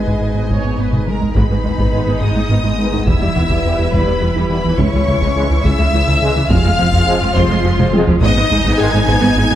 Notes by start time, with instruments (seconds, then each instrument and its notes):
Already playing: double bass section G#1, sub bass G#1, trombone section G#2 G#3, cello section G#3, analog synth pad G#3 B3 D#4 G#4, viola section G#4 B4, french horn section B4 D#5, violin section D#5 G#5
0.07 analog synth bass G#2, synth arpeggio sound G#3, taiko
0.21 analog synth bass G#2
0.35 analog synth bass G#2, synth arpeggio sound B3
0.50 analog synth bass G#2, synth arpeggio sound G#3, viola section C#5, taiko
0.64 analog synth bass G#2, synth arpeggio sound B3
0.78 analog synth bass G#2, synth arpeggio sound B3, viola section B4
0.92 analog synth bass G#2, synth arpeggio sound G#3, taiko mid
1.07 analog synth bass G#3, viola section A#4, violin section A#4 A#5, taiko high
1.21 analog synth bass G#3, synth arpeggio sound D#4, taiko low
1.35 sub bass G#1, double bass section G#1, analog synth bass G#2, cello section G#2, analog synth pad G#3 B3 D#4 G#4, viola section G#3 D#4, synth arpeggio sound G#3, violin section B4 B5, taiko
1.50 analog synth bass G#2, cello section G#2, viola section G#3, synth arpeggio sound B3
1.64 double bass section G#1, cello section G#2, viola section D#3, analog synth bass G#3, synth arpeggio sound D#4, taiko low
1.78 analog synth bass G#2, cello section G#2, synth arpeggio sound G#3, viola section G#3, taiko
1.91 analog synth bass G#2, trombone section D#3 G#3, french horn section B3 B4
2.07 analog synth bass G#2, cello section G#2, viola section D#3, synth arpeggio sound B3
2.21 double bass section G#1, analog synth bass G#2, cello section G#2, viola section G#3, synth arpeggio sound G#3, violin section D#5 D#6, taiko
2.35 analog synth bass G#2, cello section G#2, viola section G#3, synth arpeggio sound B3
2.50 double bass section G#1, analog synth bass G#2, cello section G#2, viola section D#3, synth arpeggio sound B3
2.64 analog synth bass G#2, cello section G#2, viola section G#3, synth arpeggio sound G#3
2.78 trombone section D#3 G#3, analog synth bass G#3, french horn section B3 B4
2.93 cello section G#2, viola section D#3, analog synth bass G#3, synth arpeggio sound D#4, taiko low
3.06 double bass section E1, sub bass E1, analog synth bass E2, cello section E2, synth arpeggio sound E3, analog synth pad G3 E4 B4, viola section G3 E4, violin section E5 E6, taiko
3.21 analog synth bass E2, cello section E2, viola section G3, synth arpeggio sound G3
3.36 double bass section E1, cello section E2, analog synth bass E3, viola section E3, synth arpeggio sound B3, taiko low
3.49 analog synth bass E2, cello section E2, synth arpeggio sound E3, viola section G3, taiko
3.65 analog synth bass E2, trombone section E3 G3, french horn section B3 B4
3.79 analog synth bass E2, cello section E2, viola section E3, synth arpeggio sound G3
3.93 double bass section E1, analog synth bass E2, cello section E2, synth arpeggio sound E3, viola section G3, violin section B4 B5, taiko
4.07 analog synth bass E2, cello section E2, synth arpeggio sound G3, viola section G3
4.22 double bass section E1, analog synth bass E2, cello section E2, viola section E3, synth arpeggio sound G3
4.36 analog synth bass E2, cello section E2, synth arpeggio sound E3, viola section G3
4.50 trombone section E3 G3, analog synth bass E3, french horn section B3 B4, violin section B4 B5
4.64 cello section E2, analog synth bass E3, viola section E3, synth arpeggio sound B3, taiko low
4.78 sub bass C#2, double bass section C#2, analog synth bass C#2, cello section C#2, synth arpeggio sound C#3, analog synth pad G#3 C#4 G#4, viola section G#3, violin section C#5 C#6, taiko
4.93 analog synth bass C#2, cello section C#2, synth arpeggio sound E3, viola section G#3
5.07 double bass section C#2, cello section C#2, analog synth bass C#3, viola section E3, synth arpeggio sound G#3, taiko low
5.22 cello section C#2, analog synth bass C#2, synth arpeggio sound C#3, viola section G#3, taiko
5.36 analog synth bass C#2, trombone section E3 G#3, french horn section C#4 G#4
5.50 cello section C#2, analog synth bass C#2, viola section E3, synth arpeggio sound E3
5.64 double bass section C#2, analog synth bass C#2, cello section C#2, synth arpeggio sound C#3, viola section G#3, violin section E5 E6, taiko
5.79 cello section C#2, analog synth bass C#2, synth arpeggio sound E3, viola section G#3
5.93 analog synth bass C#2, double bass section C#2, cello section C#2, viola section E3, synth arpeggio sound E3
6.07 cello section C#2, analog synth bass C#2, synth arpeggio sound C#3, viola section G#3
6.21 analog synth bass C#3, trombone section E3 G#3, french horn section C#4 G#4
6.36 cello section C#2, analog synth bass C#3, viola section E3, synth arpeggio sound G#3, taiko low
6.49 sub bass F1, double bass section F1, analog synth bass F2, cello section F2, synth arpeggio sound F3, viola section G#3 F4, analog synth pad C4 F4, violin section F5 F6, taiko
6.65 analog synth bass F2, cello section F2, viola section G#3, synth arpeggio sound G#3
6.79 double bass section F1, cello section F2, analog synth bass F3, viola section F3, synth arpeggio sound C4, taiko low
6.93 analog synth bass F2, cello section F2, synth arpeggio sound F3, viola section G#3, taiko
7.06 analog synth bass F2, trombone section F3 G#3, french horn section C4 G#4
7.21 analog synth bass F2, cello section F2, viola section F3, synth arpeggio sound G#3
7.35 double bass section F1, analog synth bass F2, cello section F2, synth arpeggio sound F3, viola section G#3, violin section C5 C6, taiko
7.49 analog synth bass F2, cello section F2, synth arpeggio sound G#3, viola section G#3
7.64 double bass section F1, analog synth bass F2, cello section F2, viola section F3, synth arpeggio sound G#3
7.78 analog synth bass F2, cello section F2, synth arpeggio sound F3, viola section G#3, taiko mid
7.93 analog synth bass F3, trombone section F3 G#3, french horn section C4 G#4, taiko high
8.07 cello section F2, viola section F3, analog synth bass F3, synth arpeggio sound C4, taiko low
8.21 double bass section G#1, sub bass G#1, analog synth bass G#2, cello section G#2, synth arpeggio sound G#3, analog synth pad B3 D#4, viola section B3 D#4, violin section D#5 D#6, taiko
8.37 cello section G#2, analog synth bass G#2, viola section B3, synth arpeggio sound B3
8.50 double bass section G#1, cello section G#2, viola section G#3, analog synth bass G#3, synth arpeggio sound D#4, taiko low
8.65 analog synth bass G#2, cello section G#2, synth arpeggio sound G#3, viola section B3, taiko
8.77 analog synth bass G#2, trombone section D#3 G#3, french horn section B3 G#4, violin section G#5 G#6
8.93 analog synth bass G#2, cello section G#2, viola section G#3, synth arpeggio sound B3
9.07 double bass section G#1, cello section G#2, analog synth bass G#2, synth arpeggio sound G#3, viola section B3, taiko
9.21 cello section G#2, analog synth bass G#2, viola section B3, synth arpeggio sound B3
9.35 double bass section G#1, cello section G#2, analog synth bass G#2, viola section G#3, synth arpeggio sound B3
9.50 cello section G#2, analog synth bass G#2, synth arpeggio sound G#3, viola section B3